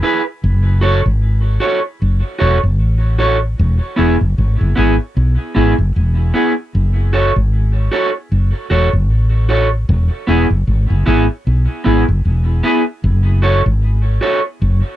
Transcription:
0.03 clean electric guitar E4 G#4 B4
0.44 fretless electric bass F#1
0.81 clean electric guitar F#4 A4 C#5
1.06 fretless electric bass G#1
1.60 clean electric guitar F#4 A4 C#5
2.02 fretless electric bass F#1
2.39 fretless electric bass E1, clean electric guitar F#4 A4 C#5
2.63 fretless electric bass F#1
2.81 fretless electric bass A1
3.19 clean electric guitar F#4 A4 C#5
3.59 fretless electric bass E1
3.96 fretless electric bass E1, clean electric guitar B3 E4 G#4
4.21 fretless electric bass F#1
4.38 fretless electric bass G#1
4.61 fretless electric bass F#1
4.76 fretless electric bass G#1, clean electric guitar B3 E4 G#4
5.17 fretless electric bass B1
5.55 fretless electric bass G#1, clean electric guitar B3 E4 G#4
5.78 fretless electric bass F#1
5.96 fretless electric bass E1
6.34 clean electric guitar B3 E4 G#4
6.75 fretless electric bass F#1
7.13 clean electric guitar F#4 A4 C#5
7.36 fretless electric bass G#1
7.92 clean electric guitar F#4 A4 C#5
8.32 fretless electric bass F#1
8.70 fretless electric bass E1, clean electric guitar F#4 A4 C#5
8.93 fretless electric bass F#1
9.10 fretless electric bass A1
9.49 clean electric guitar F#4 A4 C#5
9.89 fretless electric bass E1
10.27 fretless electric bass E1, clean electric guitar B3 E4 G#4
10.50 fretless electric bass F#1
10.67 fretless electric bass G#1
10.90 fretless electric bass F#1
11.06 fretless electric bass G#1, clean electric guitar B3 E4 G#4
11.47 fretless electric bass B1
11.84 fretless electric bass G#1, clean electric guitar B3 E4 G#4
12.08 fretless electric bass F#1
12.25 fretless electric bass E1
12.63 clean electric guitar B3 E4 G#4
13.04 fretless electric bass F#1
13.42 clean electric guitar F#4 A4 C#5
13.66 fretless electric bass G#1
14.21 clean electric guitar F#4 A4 C#5
14.62 fretless electric bass F#1

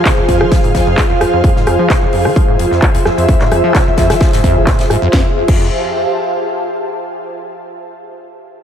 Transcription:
Already playing: synth drone F3, ambient pad F4 G#4 C5 F5
0.05 acid bass C3, kick, snare, clap, closed hi-hat
0.18 acid bass E2, closed hi-hat
0.29 acid bass F2, kick, closed hi-hat, open hi-hat
0.41 acid bass F3, cross-stick, closed hi-hat
0.52 acid bass F3, kick, snare, closed hi-hat
0.64 acid bass G#2, closed hi-hat
0.75 acid bass F2, kick, snare, closed hi-hat, open hi-hat
0.87 acid bass F2, closed hi-hat
0.98 kick, snare, clap, closed hi-hat
1.10 acid bass E2, closed hi-hat
1.21 acid bass F2, cross-stick, closed hi-hat, open hi-hat
1.33 acid bass F2, closed hi-hat
1.44 acid bass F2, kick, closed hi-hat
1.56 acid bass G#2, snare, closed hi-hat
1.67 acid bass F2, cross-stick, closed hi-hat, open hi-hat
1.79 acid bass F3, closed hi-hat
1.90 acid bass C3, kick, snare, clap, closed hi-hat
2.02 acid bass E2, closed hi-hat
2.07 ambient pad E5
2.13 acid bass F2, open hi-hat
2.25 acid bass F3, cross-stick, closed hi-hat
2.36 acid bass F3, kick, closed hi-hat
2.48 acid bass G#2, closed hi-hat
2.59 acid bass F2, closed hi-hat, open hi-hat
2.71 acid bass F2, snare, closed hi-hat
2.82 kick, clap, closed hi-hat
2.94 acid bass E2, closed hi-hat
3.05 acid bass F2, cross-stick, snare, open hi-hat
3.18 acid bass F2, closed hi-hat
3.28 kick, closed hi-hat
3.39 acid bass G#2, snare, clap
3.52 acid bass F2, cross-stick, closed hi-hat, open hi-hat
3.64 acid bass F3, closed hi-hat
3.75 acid bass C3, kick, snare, clap, closed hi-hat
3.87 acid bass E2, closed hi-hat
3.97 acid bass F2, kick, snare, closed hi-hat
4.10 acid bass F3, cross-stick, snare, closed hi-hat
4.21 acid bass F3, kick, snare, closed hi-hat
4.33 acid bass G#2, snare, closed hi-hat
4.44 acid bass F2, kick, closed hi-hat, open hi-hat
4.56 acid bass F1
4.67 acid bass A#2, kick, snare, clap, closed hi-hat
4.79 acid bass F2, snare, closed hi-hat
4.90 acid bass G#2, cross-stick, closed hi-hat
5.02 acid bass F2
5.13 acid bass F2, ambient pad G4, kick, snare
5.20 ambient pad C5
5.28 ambient pad F5
5.34 ambient pad A5
5.48 acid bass F2, kick, crash

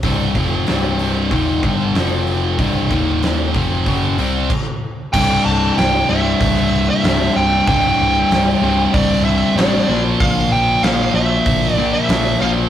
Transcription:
0.03 picked electric bass C1, overdriven electric guitar C2 G2 C3, kick, open hi-hat
0.35 picked electric bass F1, overdriven electric guitar F2 C3 F3, kick, open hi-hat
0.67 picked electric bass C1, overdriven electric guitar C2 G2 C3, snare, open hi-hat
0.99 open hi-hat
1.31 picked electric bass D#1, overdriven electric guitar D#2 A#2 D#3, kick, open hi-hat
1.63 picked electric bass G1, overdriven electric guitar G2 D3 G3, kick, open hi-hat
1.95 picked electric bass F1, overdriven electric guitar F2 C3 F3, snare, open hi-hat
2.27 open hi-hat
2.59 picked electric bass C1, overdriven electric guitar C2 G2 C3, kick, open hi-hat
2.91 picked electric bass D#1, overdriven electric guitar D#2 A#2 D#3, kick, open hi-hat
3.23 snare, open hi-hat
3.54 picked electric bass F1, overdriven electric guitar F2 C3 F3, kick, open hi-hat
3.86 picked electric bass F#1, overdriven electric guitar F#2 C#3 F#3, kick, open hi-hat
4.18 picked electric bass C2, overdriven electric guitar C3 G3 C4, open hi-hat
4.50 kick, crash
5.13 picked electric bass C1, overdriven electric guitar C2 G2 C3, lead electric guitar G5, kick, crash
5.45 picked electric bass C1, lead electric guitar A5
5.77 picked electric bass C1, lead electric guitar G5, snare, open hi-hat
6.09 picked electric bass C1, overdriven electric guitar C2 G2 C3, lead electric guitar E5
6.40 picked electric bass C1, kick, open hi-hat
6.90 lead electric guitar E5
7.04 picked electric bass C1, overdriven electric guitar C2 G2 C3, snare, open hi-hat
7.36 picked electric bass C1, lead electric guitar G5
7.67 picked electric bass C1, overdriven electric guitar C2 G2 C3, lead electric guitar G5, kick, open hi-hat
7.99 picked electric bass C1
8.30 picked electric bass C1, snare, open hi-hat
8.61 picked electric bass C1, overdriven electric guitar C2 G2 C3
8.94 picked electric bass C1, lead electric guitar D5, kick, open hi-hat
9.25 lead electric guitar E5
9.56 picked electric bass A1, overdriven electric guitar C2 G2 C3, lead electric guitar D5, snare, open hi-hat
9.88 picked electric bass A#1, overdriven electric guitar A#2 F3 A#3
10.20 picked electric bass A#1, lead electric guitar F5, kick, open hi-hat
10.51 picked electric bass A#1, lead electric guitar G5
10.83 picked electric bass A#1, overdriven electric guitar A#2 F3 A#3, lead electric guitar F5, snare, open hi-hat
11.14 picked electric bass A#1, lead electric guitar E5
11.46 picked electric bass A#1, kick, open hi-hat
11.74 overdriven electric guitar A#3, lead electric guitar D5
11.79 overdriven electric guitar A#2 F3
11.93 lead electric guitar E5
12.09 picked electric bass A#1, snare, open hi-hat
12.40 picked electric bass A#1, overdriven electric guitar A#2 F3 A#3, lead electric guitar F5

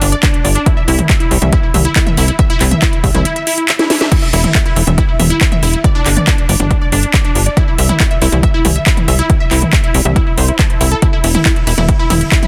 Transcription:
0.01 analog synth bass G1, synth pluck D4, open hi-hat
0.12 synth pluck D5, closed hi-hat
0.23 synth pluck D4, kick, clap, closed hi-hat
0.34 synth pluck D4, closed hi-hat
0.44 analog synth bass G1, synth pluck D5, open hi-hat
0.55 synth pluck D4, closed hi-hat
0.66 synth pluck E4, kick, closed hi-hat
0.77 synth pluck E5
0.88 analog synth bass C2, synth pluck E4, open hi-hat
0.98 synth pluck E4, closed hi-hat, mid tom
1.09 synth pluck E5, kick, clap, closed hi-hat
1.20 synth pluck E4, closed hi-hat
1.31 analog synth bass C2, synth pluck E4, open hi-hat
1.42 analog synth bass C2, synth pluck E5, closed hi-hat, mid tom
1.53 synth pluck E4, kick, closed hi-hat
1.63 synth pluck E4
1.74 analog synth bass C2, synth pluck E5, open hi-hat, mid tom
1.85 synth pluck E4, closed hi-hat
1.96 synth pluck E4, kick, clap, closed hi-hat
2.06 synth pluck E5, closed hi-hat, mid tom
2.17 analog synth bass C2, synth pluck E4, open hi-hat
2.28 synth pluck E4, closed hi-hat
2.39 synth pluck E5, kick, closed hi-hat
2.50 synth pluck E4, closed hi-hat
2.61 analog synth bass C2, synth pluck E4, clap, open hi-hat
2.71 synth pluck E5, closed hi-hat, mid tom
2.82 synth pluck E4, kick, clap, closed hi-hat
2.93 synth pluck E4, closed hi-hat
3.04 analog synth bass C2, synth pluck E5, kick, open hi-hat
3.14 analog synth bass C2, synth pluck E4, closed hi-hat, mid tom
3.25 synth pluck E4, closed hi-hat
3.36 synth pluck E5, closed hi-hat
3.47 synth pluck E4, open hi-hat
3.58 synth pluck E4, closed hi-hat
3.68 synth pluck E5, clap, closed hi-hat
3.79 synth pluck E4, snare, closed hi-hat
3.90 synth pluck E4, snare, open hi-hat
4.01 synth pluck E5, snare, closed hi-hat
4.12 synth pluck E4, kick, closed hi-hat, crash
4.22 synth pluck E5
4.33 analog synth bass E1, synth pluck E4, open hi-hat
4.44 synth pluck E4, closed hi-hat, mid tom
4.55 synth pluck E5, kick, clap, closed hi-hat
4.66 synth pluck E4, closed hi-hat
4.76 analog synth bass E1, synth pluck E4, open hi-hat
4.87 analog synth bass E1, synth pluck E5, closed hi-hat, mid tom
4.98 synth pluck E4, kick, closed hi-hat
5.09 synth pluck E4
5.20 analog synth bass E1, synth pluck E5, open hi-hat, mid tom
5.30 synth pluck E4, closed hi-hat
5.41 synth pluck E4, kick, clap, closed hi-hat
5.52 synth pluck E5, closed hi-hat, mid tom
5.63 analog synth bass E1, synth pluck E4, open hi-hat
5.73 synth pluck E4, closed hi-hat
5.84 synth pluck D5, kick, closed hi-hat
5.95 synth pluck D4
6.06 analog synth bass G1, synth pluck D4, clap, open hi-hat
6.17 synth pluck D5, closed hi-hat, mid tom
6.27 synth pluck D4, kick, clap, closed hi-hat
6.38 synth pluck D4, closed hi-hat
6.49 analog synth bass G1, synth pluck D5, open hi-hat
6.60 analog synth bass G1, synth pluck D4, closed hi-hat, mid tom
6.71 synth pluck D4, kick, closed hi-hat
6.82 synth pluck D5
6.92 analog synth bass G1, synth pluck D4, open hi-hat
7.03 synth pluck D4, closed hi-hat
7.14 synth pluck D5, kick, clap, closed hi-hat
7.25 synth pluck D4, closed hi-hat
7.35 analog synth bass G1, synth pluck D4, open hi-hat
7.46 synth pluck D5, closed hi-hat
7.57 synth pluck E4, kick, closed hi-hat
7.68 synth pluck E4
7.78 analog synth bass C2, synth pluck E5, open hi-hat
7.89 synth pluck E4, closed hi-hat, mid tom
8.00 kick, clap, closed hi-hat
8.11 synth pluck E5, closed hi-hat
8.22 analog synth bass C2, synth pluck E4, open hi-hat
8.32 analog synth bass C2, synth pluck E4, closed hi-hat, mid tom
8.43 synth pluck E5, kick, closed hi-hat
8.54 synth pluck E4
8.65 analog synth bass C2, synth pluck E4, open hi-hat, mid tom
8.76 synth pluck E5, closed hi-hat
8.86 synth pluck E4, kick, clap, closed hi-hat
8.97 synth pluck E4, closed hi-hat, mid tom
9.08 analog synth bass C2, synth pluck E5, open hi-hat
9.19 synth pluck E4, closed hi-hat
9.30 synth pluck E4, kick, closed hi-hat
9.40 synth pluck E5
9.51 analog synth bass C2, synth pluck E4, clap, open hi-hat
9.62 synth pluck E4, closed hi-hat, mid tom
9.73 synth pluck E5, kick, clap, closed hi-hat
9.84 synth pluck E4, closed hi-hat
9.94 analog synth bass C2, synth pluck E4, open hi-hat
10.05 analog synth bass C2, synth pluck E5, closed hi-hat, mid tom
10.16 synth pluck E4, kick, closed hi-hat
10.27 synth pluck E4
10.38 analog synth bass C2, synth pluck C5, open hi-hat
10.48 synth pluck E4, closed hi-hat
10.59 synth pluck A5, kick, clap, closed hi-hat
10.70 synth pluck E4, closed hi-hat
10.81 analog synth bass C2, synth pluck E4, open hi-hat
10.91 synth pluck A4, closed hi-hat
11.02 synth pluck E4, kick, closed hi-hat
11.13 synth pluck E4
11.24 analog synth bass E1, synth pluck E4, open hi-hat, ride
11.35 synth pluck E4, closed hi-hat, mid tom
11.45 synth pluck E4, kick, clap, closed hi-hat
11.56 synth pluck E4, closed hi-hat
11.67 analog synth bass E1, synth pluck E4, open hi-hat, ride
11.78 analog synth bass E1, synth pluck E4, closed hi-hat, mid tom
11.89 synth pluck E4, kick, closed hi-hat
11.99 synth pluck E4
12.10 analog synth bass E1, synth pluck E4, open hi-hat, mid tom, ride
12.21 synth pluck E4, closed hi-hat
12.32 synth pluck E4, kick, clap, closed hi-hat
12.43 synth pluck E4, closed hi-hat, mid tom

